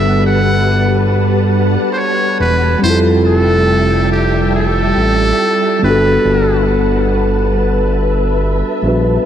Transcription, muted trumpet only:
0.00 0.23 E5 loud
0.26 1.08 F#5 loud
1.93 1.98 C5 medium
1.93 2.40 C#5 loud
2.40 2.80 B4 loud
2.83 2.99 C5 loud
3.26 4.07 A4 loud
4.12 4.51 G4 medium
4.55 5.79 A4 loud
5.84 6.65 B4 medium

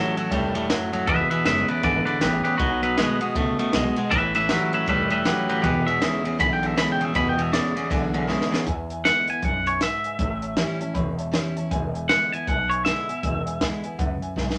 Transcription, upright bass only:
0.17 muted upright bass stroke medium
0.31 0.74 E1 medium
0.93 muted upright bass stroke medium
1.08 1.24 E1 loud
1.45 1.65 F#1 medium
1.84 2.03 G#1 medium
2.07 muted upright bass stroke medium
2.21 2.41 A1 medium
2.45 muted upright bass stroke medium
2.60 3.02 B1 loud
3.21 muted upright bass stroke medium
3.36 3.55 C#2 medium
3.59 muted upright bass stroke medium
3.74 3.93 B1 medium
4.11 4.54 A1 loud
4.73 muted upright bass stroke medium
4.88 5.31 E1 medium
5.50 muted upright bass stroke medium
5.64 6.07 E1 loud
6.25 muted upright bass stroke medium
6.39 6.82 B1 medium
7.01 muted upright bass stroke medium
7.15 7.58 E1 loud
7.76 muted upright bass stroke medium
7.91 8.34 B1 medium
8.53 muted upright bass stroke medium
8.66 9.10 E2 loud
9.28 muted upright bass stroke medium
9.43 9.86 B1 medium
10.05 muted upright bass stroke medium
10.19 10.62 A1 medium
10.80 muted upright bass stroke medium
10.95 11.38 E1 medium
11.56 muted upright bass stroke medium
11.71 12.14 E1 loud
12.33 muted upright bass stroke medium
12.48 12.90 B1 medium
13.09 muted upright bass stroke medium
13.23 13.66 E1 loud
13.85 muted upright bass stroke medium
13.99 14.19 C#2 medium
14.22 muted upright bass stroke medium
14.36 14.56 B1 medium

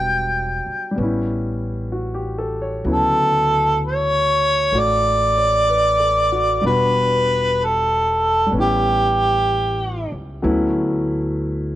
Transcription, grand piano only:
0.00 1.01 F#3 soft
0.00 0.90 G3 soft
0.00 0.94 B3 soft
0.00 0.99 D4 soft
0.91 2.83 G3 soft
0.96 2.85 B3 soft
0.96 2.86 C#4 soft
1.03 2.85 E4 soft
1.92 2.36 F#4 soft
2.14 2.55 G4 soft
2.38 2.68 A4 soft
2.62 2.95 C#5 soft
2.85 6.63 C#3 soft
2.85 6.62 F#3 soft
2.85 6.61 B3 soft
2.85 6.63 E4 soft
4.72 6.62 A3 soft
4.72 6.31 F#4 soft
5.37 5.86 C#5 soft
5.68 6.27 B4 soft
6.00 6.49 A4 soft
6.32 6.65 F#4 soft
6.61 8.45 G3 soft
6.61 8.50 B3 soft
6.61 8.52 D4 soft
6.66 8.53 F#4 soft
8.46 10.41 G3 soft
8.51 10.41 B3 soft
8.51 10.43 C#4 soft
8.58 10.42 E4 soft
10.42 11.76 F#3 soft
10.42 11.76 A3 soft
10.42 11.76 B3 soft
10.42 11.76 C#4 soft
10.42 11.76 E4 medium

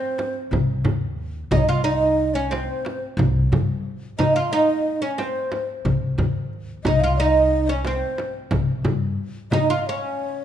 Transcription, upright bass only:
0.52 0.80 C2 medium
0.84 1.43 D#2 medium
1.51 2.67 C2 medium
3.17 3.47 C2 medium
3.52 3.81 G2 medium
5.85 6.14 C2 medium
6.18 6.76 D#2 medium
6.85 8.01 C2 medium
8.51 8.81 C2 medium
8.84 9.14 G2 medium

